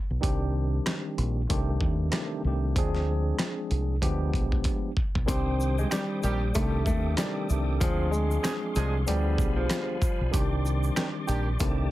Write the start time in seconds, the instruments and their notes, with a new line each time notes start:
0.10 fingered electric bass B1
0.21 fingered electric bass C2, tine electric piano D#3 G3 C4 D4 G4, kick, closed hi-hat
0.86 cross-stick, snare, closed hi-hat
1.18 fingered electric bass A#1, closed hi-hat
1.49 tine electric piano C2 D#3 A3 C4 D4 G4, fingered electric bass C2, kick, closed hi-hat
1.81 fingered electric bass D#2, kick
2.11 tine electric piano C2 D#3 A3 C4 D4 G4, cross-stick, snare, closed hi-hat
2.44 fingered electric bass C2, tine electric piano C2 D#3 A3 C4 D4 G4
2.76 fingered electric bass D2, tine electric piano F3 G#3 C4 D4 G#4, kick, closed hi-hat
2.95 snare
3.39 cross-stick, snare, closed hi-hat
3.71 fingered electric bass C2, closed hi-hat
4.01 tine electric piano D2 F3 G#3 B3 D4 G4, fingered electric bass D2, kick, closed hi-hat
4.34 fingered electric bass B1, kick, closed hi-hat
4.52 kick
4.64 kick, closed hi-hat
4.97 kick
5.15 fingered electric bass B1, kick
5.26 fingered electric bass C2, tine electric piano D#3 G3 C4 D4 G4, nylon-string guitar C4, tonewheel organ C5 G5 D6 D#6, kick, closed hi-hat, shaker
5.60 shaker
5.78 nylon-string guitar G#3, shaker
5.91 horn section D#3 G3 D4 G4, nylon-string guitar G3, cross-stick, snare, closed hi-hat, shaker
6.23 fingered electric bass A#1, horn section D#3 G3 D4 G4, nylon-string guitar G3, closed hi-hat, shaker
6.54 tine electric piano C2 D#3 A3 C4 D4 G4, fingered electric bass C2, nylon-string guitar A3, tonewheel organ A4, kick, closed hi-hat, shaker
6.86 fingered electric bass D#2, nylon-string guitar A3, kick, shaker
7.16 tine electric piano C2 D#3 A3 C4 D4 G4, nylon-string guitar G3, cross-stick, snare, closed hi-hat, shaker
7.49 fingered electric bass C2, tine electric piano C2 D#3 A3 C4 D4 G4, shaker
7.80 fingered electric bass D2, nylon-string guitar F3, tine electric piano F3 G#3 C4 D4 G#4, tonewheel organ G#4 F5 C6, kick, closed hi-hat, shaker
8.11 nylon-string guitar G#3, shaker
8.31 shaker
8.43 horn section F3 G#3 D4 G#4, cross-stick, snare, closed hi-hat, shaker
8.75 fingered electric bass C2, horn section F3 G#3 D4 G#4, closed hi-hat, shaker
9.06 tine electric piano D2 F3 B3 D4 G4 G#4, fingered electric bass D2, nylon-string guitar G3, tonewheel organ G3 G#5 B5, closed hi-hat, shaker
9.38 fingered electric bass B1, kick, shaker
9.56 nylon-string guitar F3
9.70 cross-stick, snare, closed hi-hat, shaker
10.02 kick, shaker
10.21 fingered electric bass B1
10.31 fingered electric bass C2, tine electric piano D#3 G3 C4 D4 G4, tonewheel organ G4 D5 C6 D6, kick, closed hi-hat, shaker
10.65 shaker
10.83 shaker
10.96 horn section D#3 G3 D4 G4, cross-stick, snare, closed hi-hat, shaker
11.28 fingered electric bass A#1, horn section D#3 G3 D4 G4, closed hi-hat, shaker
11.59 tine electric piano C2 D#3 A3 C4 D4 G4, fingered electric bass C2, tonewheel organ G4 A5, kick, closed hi-hat, shaker